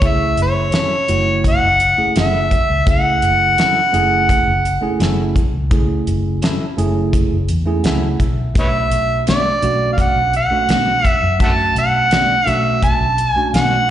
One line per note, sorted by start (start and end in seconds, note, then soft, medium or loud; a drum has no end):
0.00 0.34 C#2 medium
0.00 0.70 A3 medium
0.00 0.70 C#4 medium
0.00 0.71 E4 medium
0.00 0.71 G#4 medium
0.00 kick loud
0.00 closed hi-hat medium
0.06 0.39 E5 loud
0.37 0.71 F#1 medium
0.37 closed hi-hat medium
0.42 1.43 C#5 loud
0.72 0.94 F#3 medium
0.72 0.95 C#4 medium
0.72 0.95 E4 medium
0.72 0.95 A4 medium
0.72 snare loud
0.72 closed hi-hat medium
1.08 1.59 F#1 medium
1.08 1.66 A3 medium
1.08 1.66 C#4 medium
1.08 1.66 E4 medium
1.08 1.66 F#4 medium
1.08 closed hi-hat medium
1.44 kick medium
1.44 closed hi-hat medium
1.49 2.14 F#5 loud
1.63 1.96 F#1 medium
1.80 closed hi-hat medium
1.97 2.54 A3 medium
1.97 2.55 C#4 medium
1.97 2.55 E4 medium
1.97 2.55 G#4 medium
1.97 muted fingered electric bass stroke soft
2.16 2.49 F#1 medium
2.16 2.37 F#3 medium
2.16 2.37 C#4 medium
2.16 2.38 E4 medium
2.16 2.38 A4 medium
2.16 snare loud
2.16 closed hi-hat medium
2.21 2.85 E5 loud
2.51 kick medium
2.51 closed hi-hat medium
2.70 3.19 C#2 medium
2.86 3.55 A3 medium
2.86 3.55 C#4 medium
2.86 3.55 E4 medium
2.86 3.56 G#4 medium
2.86 kick loud
2.86 closed hi-hat medium
2.92 4.99 F#5 loud
3.22 3.56 F#1 medium
3.22 closed hi-hat medium
3.58 3.79 F#3 medium
3.58 3.80 C#4 medium
3.58 3.80 E4 medium
3.58 3.80 A4 medium
3.58 snare loud
3.58 closed hi-hat medium
3.92 4.44 F#1 medium
3.92 4.50 A3 medium
3.92 4.50 C#4 medium
3.92 4.51 E4 medium
3.92 4.51 G#4 loud
3.92 closed hi-hat medium
4.29 kick medium
4.29 closed hi-hat medium
4.47 4.80 F#1 medium
4.65 closed hi-hat medium
4.81 5.39 A3 medium
4.81 5.39 C#4 medium
4.81 5.39 E4 medium
4.81 5.39 G#4 loud
5.00 5.33 F#1 medium
5.00 5.22 F#3 medium
5.00 5.22 C#4 medium
5.00 5.22 E4 medium
5.00 5.23 A4 loud
5.00 snare loud
5.00 closed hi-hat medium
5.36 kick medium
5.36 closed hi-hat medium
5.53 6.03 C#2 medium
5.70 6.39 A3 medium
5.70 6.40 C#4 medium
5.70 6.40 E4 medium
5.70 6.40 G#4 medium
5.70 kick loud
5.70 closed hi-hat medium
6.07 6.40 F#1 medium
6.07 closed hi-hat medium
6.42 6.64 F#3 medium
6.42 6.64 C#4 medium
6.42 6.64 E4 loud
6.42 6.65 A4 loud
6.42 snare loud
6.42 closed hi-hat medium
6.77 7.28 F#1 medium
6.77 7.35 A3 medium
6.77 7.35 C#4 medium
6.77 7.36 E4 medium
6.77 7.36 G#4 loud
6.77 closed hi-hat medium
7.13 kick medium
7.13 closed hi-hat medium
7.32 7.48 F#1 medium
7.49 7.81 E2 medium
7.49 closed hi-hat medium
7.65 8.23 A3 medium
7.65 8.24 C#4 medium
7.65 8.24 E4 medium
7.65 8.24 G#4 medium
7.84 8.17 C#2 medium
7.84 8.06 F#3 medium
7.84 8.07 C#4 medium
7.84 8.07 E4 loud
7.84 8.07 A4 medium
7.84 8.17 F#5 medium
7.84 snare loud
7.84 closed hi-hat medium
8.20 8.52 B1 medium
8.20 8.53 E5 medium
8.20 kick medium
8.20 closed hi-hat medium
8.54 8.89 B1 loud
8.54 9.24 A3 medium
8.54 9.24 C#4 medium
8.54 9.24 D4 medium
8.54 9.24 F#4 medium
8.54 kick loud
8.54 closed hi-hat medium
8.60 8.67 B4 medium
8.60 8.68 C#5 medium
8.60 9.25 E5 loud
8.91 9.25 B1 medium
8.91 closed hi-hat medium
9.27 9.49 B2 medium
9.27 9.49 A3 medium
9.27 9.49 D4 medium
9.27 9.50 F#4 medium
9.27 9.89 D5 medium
9.27 snare loud
9.27 closed hi-hat medium
9.62 10.13 B1 medium
9.62 10.20 A3 medium
9.62 10.20 C#4 medium
9.62 10.20 D4 medium
9.62 10.21 F#4 medium
9.62 closed hi-hat medium
9.93 10.02 F5 medium
9.98 10.35 F#5 medium
9.98 kick medium
9.98 closed hi-hat medium
10.16 10.49 B1 medium
10.33 11.07 F#5 loud
10.33 closed hi-hat medium
10.50 11.08 A3 medium
10.50 11.08 C#4 medium
10.50 11.09 D4 medium
10.50 11.09 F#4 medium
10.50 muted fingered electric bass stroke soft
10.69 11.02 B1 medium
10.69 10.91 B2 medium
10.69 10.91 A3 medium
10.69 10.92 D4 medium
10.69 10.92 F#4 medium
10.69 snare loud
10.69 closed hi-hat medium
11.05 11.38 E5 loud
11.05 kick medium
11.05 closed hi-hat medium
11.22 11.72 F#2 medium
11.39 12.08 A3 medium
11.39 12.09 C#4 medium
11.39 12.09 D4 medium
11.39 12.09 F#4 medium
11.39 kick loud
11.39 closed hi-hat medium
11.43 11.51 E5 medium
11.43 11.52 F#5 medium
11.43 11.75 A5 loud
11.75 12.09 B1 medium
11.75 12.50 F#5 loud
11.75 closed hi-hat medium
12.11 12.33 B2 medium
12.11 12.34 A3 medium
12.11 12.34 D4 medium
12.11 12.34 F#4 medium
12.11 snare loud
12.11 closed hi-hat medium
12.46 12.97 B1 medium
12.46 13.04 A3 medium
12.46 13.04 C#4 medium
12.46 13.04 D4 medium
12.46 13.05 F#4 medium
12.46 closed hi-hat medium
12.50 12.80 E5 loud
12.83 13.31 A5 loud
12.83 kick medium
12.83 closed hi-hat medium
13.01 13.34 B1 medium
13.18 closed hi-hat medium
13.31 13.50 G#5 loud
13.36 13.90 A3 medium
13.36 13.90 C#4 medium
13.36 13.90 D4 medium
13.36 13.90 F#4 medium
13.36 muted fingered electric bass stroke soft
13.54 13.87 B1 medium
13.54 13.76 B2 medium
13.54 13.76 A3 medium
13.54 13.76 D4 medium
13.54 13.76 F#4 medium
13.54 13.90 F#5 loud
13.54 snare loud
13.54 closed hi-hat medium